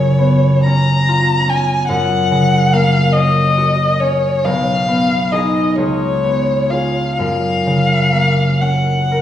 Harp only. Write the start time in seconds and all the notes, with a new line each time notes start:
Already playing: F#2 C#3 B3 C#4 F4
0.18 B3
0.66 C#4
1.09 F4
1.48 C#4
1.89 F#2
2.31 C#3
2.73 A#3
3.16 C#4
3.58 F#4
4.01 C#4
4.45 B1
4.88 B3
5.32 D#4 G#4
5.77 C#2
6.24 B3
6.71 F4 G#4
7.19 F#2
7.66 C#3
8.12 A#3
8.61 C#4
9.11 A#4